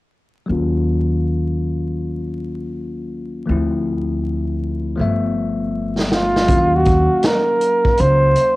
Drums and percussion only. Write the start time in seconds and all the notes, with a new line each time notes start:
5.99 snare
6.11 snare
6.36 snare
6.48 kick, closed hi-hat
6.85 kick, closed hi-hat
7.23 snare, closed hi-hat
7.61 closed hi-hat
7.85 kick
7.97 closed hi-hat
8.36 closed hi-hat